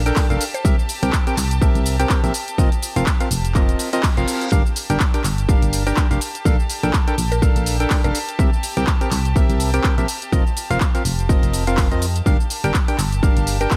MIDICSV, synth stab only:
0, 0, Header, 1, 2, 480
1, 0, Start_track
1, 0, Key_signature, -2, "minor"
1, 0, Tempo, 483871
1, 643, Time_signature, 4, 2, 24, 8
1, 13657, End_track
2, 0, Start_track
2, 0, Title_t, "Synth stab"
2, 0, Program_c, 0, 62
2, 59, Note_on_c, 0, 62, 88
2, 59, Note_on_c, 0, 69, 77
2, 59, Note_on_c, 0, 70, 82
2, 59, Note_on_c, 0, 79, 100
2, 266, Note_off_c, 0, 62, 0
2, 266, Note_off_c, 0, 69, 0
2, 266, Note_off_c, 0, 70, 0
2, 266, Note_off_c, 0, 79, 0
2, 299, Note_on_c, 0, 62, 78
2, 299, Note_on_c, 0, 69, 67
2, 299, Note_on_c, 0, 70, 69
2, 299, Note_on_c, 0, 77, 81
2, 441, Note_off_c, 0, 62, 0
2, 441, Note_off_c, 0, 69, 0
2, 441, Note_off_c, 0, 70, 0
2, 441, Note_off_c, 0, 77, 0
2, 642, Note_on_c, 0, 60, 96
2, 642, Note_on_c, 0, 67, 89
2, 642, Note_on_c, 0, 70, 88
2, 642, Note_on_c, 0, 76, 101
2, 752, Note_off_c, 0, 60, 0
2, 752, Note_off_c, 0, 67, 0
2, 752, Note_off_c, 0, 70, 0
2, 752, Note_off_c, 0, 76, 0
2, 1020, Note_on_c, 0, 60, 95
2, 1020, Note_on_c, 0, 67, 88
2, 1020, Note_on_c, 0, 70, 90
2, 1020, Note_on_c, 0, 79, 106
2, 1102, Note_off_c, 0, 60, 0
2, 1102, Note_off_c, 0, 67, 0
2, 1102, Note_off_c, 0, 70, 0
2, 1102, Note_off_c, 0, 79, 0
2, 1260, Note_on_c, 0, 60, 84
2, 1260, Note_on_c, 0, 67, 75
2, 1260, Note_on_c, 0, 70, 79
2, 1260, Note_on_c, 0, 79, 94
2, 1342, Note_off_c, 0, 60, 0
2, 1342, Note_off_c, 0, 67, 0
2, 1342, Note_off_c, 0, 70, 0
2, 1342, Note_off_c, 0, 79, 0
2, 1602, Note_on_c, 0, 76, 84
2, 1603, Note_on_c, 0, 60, 73
2, 1603, Note_on_c, 0, 67, 70
2, 1603, Note_on_c, 0, 70, 72
2, 1947, Note_off_c, 0, 60, 0
2, 1947, Note_off_c, 0, 67, 0
2, 1947, Note_off_c, 0, 70, 0
2, 1947, Note_off_c, 0, 76, 0
2, 1980, Note_on_c, 0, 60, 87
2, 1980, Note_on_c, 0, 67, 80
2, 1980, Note_on_c, 0, 70, 82
2, 1980, Note_on_c, 0, 79, 101
2, 2187, Note_off_c, 0, 60, 0
2, 2187, Note_off_c, 0, 67, 0
2, 2187, Note_off_c, 0, 70, 0
2, 2187, Note_off_c, 0, 79, 0
2, 2219, Note_on_c, 0, 60, 79
2, 2219, Note_on_c, 0, 67, 67
2, 2219, Note_on_c, 0, 70, 73
2, 2219, Note_on_c, 0, 76, 85
2, 2310, Note_off_c, 0, 60, 0
2, 2310, Note_off_c, 0, 67, 0
2, 2310, Note_off_c, 0, 70, 0
2, 2310, Note_off_c, 0, 76, 0
2, 2563, Note_on_c, 0, 60, 96
2, 2563, Note_on_c, 0, 65, 93
2, 2563, Note_on_c, 0, 70, 90
2, 2563, Note_on_c, 0, 75, 106
2, 2673, Note_off_c, 0, 60, 0
2, 2673, Note_off_c, 0, 65, 0
2, 2673, Note_off_c, 0, 70, 0
2, 2673, Note_off_c, 0, 75, 0
2, 2940, Note_on_c, 0, 60, 97
2, 2940, Note_on_c, 0, 65, 87
2, 2940, Note_on_c, 0, 70, 89
2, 2940, Note_on_c, 0, 77, 108
2, 3022, Note_off_c, 0, 60, 0
2, 3022, Note_off_c, 0, 65, 0
2, 3022, Note_off_c, 0, 70, 0
2, 3022, Note_off_c, 0, 77, 0
2, 3179, Note_on_c, 0, 77, 91
2, 3180, Note_on_c, 0, 60, 83
2, 3180, Note_on_c, 0, 65, 78
2, 3180, Note_on_c, 0, 70, 75
2, 3262, Note_off_c, 0, 60, 0
2, 3262, Note_off_c, 0, 65, 0
2, 3262, Note_off_c, 0, 70, 0
2, 3262, Note_off_c, 0, 77, 0
2, 3523, Note_on_c, 0, 60, 76
2, 3523, Note_on_c, 0, 65, 73
2, 3523, Note_on_c, 0, 70, 68
2, 3523, Note_on_c, 0, 75, 83
2, 3867, Note_off_c, 0, 60, 0
2, 3867, Note_off_c, 0, 65, 0
2, 3867, Note_off_c, 0, 70, 0
2, 3867, Note_off_c, 0, 75, 0
2, 3899, Note_on_c, 0, 60, 96
2, 3899, Note_on_c, 0, 65, 90
2, 3899, Note_on_c, 0, 70, 86
2, 3899, Note_on_c, 0, 75, 105
2, 3982, Note_off_c, 0, 60, 0
2, 3982, Note_off_c, 0, 65, 0
2, 3982, Note_off_c, 0, 70, 0
2, 3982, Note_off_c, 0, 75, 0
2, 4140, Note_on_c, 0, 60, 91
2, 4140, Note_on_c, 0, 65, 81
2, 4140, Note_on_c, 0, 70, 78
2, 4140, Note_on_c, 0, 77, 101
2, 4458, Note_off_c, 0, 60, 0
2, 4458, Note_off_c, 0, 65, 0
2, 4458, Note_off_c, 0, 70, 0
2, 4458, Note_off_c, 0, 77, 0
2, 4482, Note_on_c, 0, 62, 90
2, 4482, Note_on_c, 0, 67, 85
2, 4482, Note_on_c, 0, 70, 92
2, 4482, Note_on_c, 0, 77, 103
2, 4592, Note_off_c, 0, 62, 0
2, 4592, Note_off_c, 0, 67, 0
2, 4592, Note_off_c, 0, 70, 0
2, 4592, Note_off_c, 0, 77, 0
2, 4859, Note_on_c, 0, 62, 95
2, 4859, Note_on_c, 0, 79, 106
2, 4860, Note_on_c, 0, 67, 89
2, 4860, Note_on_c, 0, 70, 88
2, 4942, Note_off_c, 0, 62, 0
2, 4942, Note_off_c, 0, 67, 0
2, 4942, Note_off_c, 0, 70, 0
2, 4942, Note_off_c, 0, 79, 0
2, 5099, Note_on_c, 0, 62, 86
2, 5100, Note_on_c, 0, 67, 76
2, 5100, Note_on_c, 0, 70, 77
2, 5100, Note_on_c, 0, 79, 94
2, 5182, Note_off_c, 0, 62, 0
2, 5182, Note_off_c, 0, 67, 0
2, 5182, Note_off_c, 0, 70, 0
2, 5182, Note_off_c, 0, 79, 0
2, 5442, Note_on_c, 0, 62, 73
2, 5442, Note_on_c, 0, 67, 70
2, 5442, Note_on_c, 0, 77, 84
2, 5443, Note_on_c, 0, 70, 69
2, 5786, Note_off_c, 0, 62, 0
2, 5787, Note_off_c, 0, 67, 0
2, 5787, Note_off_c, 0, 70, 0
2, 5787, Note_off_c, 0, 77, 0
2, 5819, Note_on_c, 0, 62, 88
2, 5819, Note_on_c, 0, 79, 102
2, 5820, Note_on_c, 0, 67, 79
2, 5820, Note_on_c, 0, 70, 79
2, 6026, Note_off_c, 0, 79, 0
2, 6027, Note_off_c, 0, 62, 0
2, 6027, Note_off_c, 0, 67, 0
2, 6027, Note_off_c, 0, 70, 0
2, 6059, Note_on_c, 0, 67, 72
2, 6059, Note_on_c, 0, 70, 68
2, 6059, Note_on_c, 0, 77, 81
2, 6060, Note_on_c, 0, 62, 78
2, 6150, Note_off_c, 0, 62, 0
2, 6150, Note_off_c, 0, 67, 0
2, 6150, Note_off_c, 0, 70, 0
2, 6150, Note_off_c, 0, 77, 0
2, 6402, Note_on_c, 0, 62, 96
2, 6402, Note_on_c, 0, 69, 84
2, 6402, Note_on_c, 0, 70, 85
2, 6402, Note_on_c, 0, 77, 109
2, 6512, Note_off_c, 0, 62, 0
2, 6512, Note_off_c, 0, 69, 0
2, 6512, Note_off_c, 0, 70, 0
2, 6512, Note_off_c, 0, 77, 0
2, 6780, Note_on_c, 0, 62, 97
2, 6780, Note_on_c, 0, 69, 92
2, 6780, Note_on_c, 0, 70, 86
2, 6780, Note_on_c, 0, 79, 108
2, 6862, Note_off_c, 0, 62, 0
2, 6862, Note_off_c, 0, 69, 0
2, 6862, Note_off_c, 0, 70, 0
2, 6862, Note_off_c, 0, 79, 0
2, 7019, Note_on_c, 0, 62, 84
2, 7019, Note_on_c, 0, 69, 78
2, 7020, Note_on_c, 0, 70, 76
2, 7020, Note_on_c, 0, 79, 90
2, 7102, Note_off_c, 0, 62, 0
2, 7102, Note_off_c, 0, 69, 0
2, 7102, Note_off_c, 0, 70, 0
2, 7102, Note_off_c, 0, 79, 0
2, 7362, Note_on_c, 0, 69, 68
2, 7362, Note_on_c, 0, 70, 70
2, 7363, Note_on_c, 0, 62, 71
2, 7363, Note_on_c, 0, 77, 84
2, 7707, Note_off_c, 0, 62, 0
2, 7707, Note_off_c, 0, 69, 0
2, 7707, Note_off_c, 0, 70, 0
2, 7707, Note_off_c, 0, 77, 0
2, 7739, Note_on_c, 0, 62, 87
2, 7739, Note_on_c, 0, 69, 84
2, 7739, Note_on_c, 0, 70, 77
2, 7739, Note_on_c, 0, 79, 101
2, 7947, Note_off_c, 0, 62, 0
2, 7947, Note_off_c, 0, 69, 0
2, 7947, Note_off_c, 0, 70, 0
2, 7947, Note_off_c, 0, 79, 0
2, 7979, Note_on_c, 0, 62, 76
2, 7979, Note_on_c, 0, 69, 68
2, 7979, Note_on_c, 0, 70, 68
2, 7979, Note_on_c, 0, 77, 85
2, 8121, Note_off_c, 0, 62, 0
2, 8121, Note_off_c, 0, 69, 0
2, 8121, Note_off_c, 0, 70, 0
2, 8121, Note_off_c, 0, 77, 0
2, 8322, Note_on_c, 0, 60, 100
2, 8322, Note_on_c, 0, 70, 88
2, 8322, Note_on_c, 0, 76, 108
2, 8323, Note_on_c, 0, 67, 91
2, 8432, Note_off_c, 0, 60, 0
2, 8432, Note_off_c, 0, 70, 0
2, 8432, Note_off_c, 0, 76, 0
2, 8433, Note_off_c, 0, 67, 0
2, 8699, Note_on_c, 0, 60, 95
2, 8699, Note_on_c, 0, 70, 88
2, 8699, Note_on_c, 0, 79, 105
2, 8700, Note_on_c, 0, 67, 91
2, 8782, Note_off_c, 0, 60, 0
2, 8782, Note_off_c, 0, 67, 0
2, 8782, Note_off_c, 0, 70, 0
2, 8782, Note_off_c, 0, 79, 0
2, 8939, Note_on_c, 0, 60, 86
2, 8939, Note_on_c, 0, 67, 78
2, 8939, Note_on_c, 0, 70, 76
2, 8939, Note_on_c, 0, 79, 89
2, 9022, Note_off_c, 0, 60, 0
2, 9022, Note_off_c, 0, 67, 0
2, 9022, Note_off_c, 0, 70, 0
2, 9022, Note_off_c, 0, 79, 0
2, 9282, Note_on_c, 0, 60, 77
2, 9282, Note_on_c, 0, 67, 70
2, 9282, Note_on_c, 0, 70, 72
2, 9282, Note_on_c, 0, 76, 85
2, 9626, Note_off_c, 0, 60, 0
2, 9626, Note_off_c, 0, 67, 0
2, 9626, Note_off_c, 0, 70, 0
2, 9626, Note_off_c, 0, 76, 0
2, 9659, Note_on_c, 0, 79, 97
2, 9660, Note_on_c, 0, 60, 89
2, 9660, Note_on_c, 0, 67, 82
2, 9660, Note_on_c, 0, 70, 82
2, 9867, Note_off_c, 0, 60, 0
2, 9867, Note_off_c, 0, 67, 0
2, 9867, Note_off_c, 0, 70, 0
2, 9867, Note_off_c, 0, 79, 0
2, 9900, Note_on_c, 0, 60, 76
2, 9900, Note_on_c, 0, 67, 70
2, 9900, Note_on_c, 0, 70, 69
2, 9900, Note_on_c, 0, 76, 84
2, 9990, Note_off_c, 0, 60, 0
2, 9990, Note_off_c, 0, 67, 0
2, 9990, Note_off_c, 0, 70, 0
2, 9990, Note_off_c, 0, 76, 0
2, 10242, Note_on_c, 0, 60, 95
2, 10242, Note_on_c, 0, 65, 90
2, 10242, Note_on_c, 0, 70, 84
2, 10242, Note_on_c, 0, 75, 107
2, 10352, Note_off_c, 0, 60, 0
2, 10352, Note_off_c, 0, 70, 0
2, 10352, Note_off_c, 0, 75, 0
2, 10353, Note_off_c, 0, 65, 0
2, 10620, Note_on_c, 0, 60, 92
2, 10620, Note_on_c, 0, 65, 92
2, 10620, Note_on_c, 0, 70, 85
2, 10620, Note_on_c, 0, 77, 111
2, 10702, Note_off_c, 0, 60, 0
2, 10702, Note_off_c, 0, 65, 0
2, 10702, Note_off_c, 0, 70, 0
2, 10702, Note_off_c, 0, 77, 0
2, 10860, Note_on_c, 0, 60, 85
2, 10860, Note_on_c, 0, 65, 81
2, 10860, Note_on_c, 0, 70, 78
2, 10860, Note_on_c, 0, 77, 94
2, 10942, Note_off_c, 0, 60, 0
2, 10942, Note_off_c, 0, 65, 0
2, 10942, Note_off_c, 0, 77, 0
2, 10943, Note_off_c, 0, 70, 0
2, 11203, Note_on_c, 0, 60, 75
2, 11203, Note_on_c, 0, 65, 69
2, 11203, Note_on_c, 0, 70, 68
2, 11203, Note_on_c, 0, 75, 85
2, 11547, Note_off_c, 0, 60, 0
2, 11547, Note_off_c, 0, 65, 0
2, 11547, Note_off_c, 0, 70, 0
2, 11547, Note_off_c, 0, 75, 0
2, 11580, Note_on_c, 0, 60, 87
2, 11580, Note_on_c, 0, 65, 77
2, 11580, Note_on_c, 0, 70, 81
2, 11580, Note_on_c, 0, 77, 95
2, 11787, Note_off_c, 0, 60, 0
2, 11787, Note_off_c, 0, 65, 0
2, 11787, Note_off_c, 0, 70, 0
2, 11787, Note_off_c, 0, 77, 0
2, 11820, Note_on_c, 0, 60, 74
2, 11820, Note_on_c, 0, 65, 69
2, 11820, Note_on_c, 0, 70, 66
2, 11820, Note_on_c, 0, 75, 78
2, 11961, Note_off_c, 0, 60, 0
2, 11962, Note_off_c, 0, 65, 0
2, 11962, Note_off_c, 0, 70, 0
2, 11962, Note_off_c, 0, 75, 0
2, 12163, Note_on_c, 0, 62, 94
2, 12163, Note_on_c, 0, 67, 87
2, 12163, Note_on_c, 0, 70, 90
2, 12163, Note_on_c, 0, 77, 107
2, 12273, Note_off_c, 0, 62, 0
2, 12273, Note_off_c, 0, 67, 0
2, 12273, Note_off_c, 0, 70, 0
2, 12273, Note_off_c, 0, 77, 0
2, 12539, Note_on_c, 0, 62, 97
2, 12539, Note_on_c, 0, 67, 90
2, 12540, Note_on_c, 0, 70, 94
2, 12540, Note_on_c, 0, 79, 106
2, 12622, Note_off_c, 0, 62, 0
2, 12622, Note_off_c, 0, 67, 0
2, 12622, Note_off_c, 0, 70, 0
2, 12622, Note_off_c, 0, 79, 0
2, 12779, Note_on_c, 0, 79, 93
2, 12780, Note_on_c, 0, 62, 87
2, 12780, Note_on_c, 0, 67, 74
2, 12780, Note_on_c, 0, 70, 76
2, 12862, Note_off_c, 0, 62, 0
2, 12862, Note_off_c, 0, 67, 0
2, 12862, Note_off_c, 0, 70, 0
2, 12862, Note_off_c, 0, 79, 0
2, 13122, Note_on_c, 0, 62, 74
2, 13122, Note_on_c, 0, 67, 69
2, 13122, Note_on_c, 0, 70, 69
2, 13122, Note_on_c, 0, 77, 82
2, 13467, Note_off_c, 0, 62, 0
2, 13467, Note_off_c, 0, 67, 0
2, 13467, Note_off_c, 0, 70, 0
2, 13467, Note_off_c, 0, 77, 0
2, 13499, Note_on_c, 0, 62, 91
2, 13499, Note_on_c, 0, 67, 81
2, 13499, Note_on_c, 0, 70, 82
2, 13499, Note_on_c, 0, 79, 99
2, 13657, Note_off_c, 0, 62, 0
2, 13657, Note_off_c, 0, 67, 0
2, 13657, Note_off_c, 0, 70, 0
2, 13657, Note_off_c, 0, 79, 0
2, 13657, End_track
0, 0, End_of_file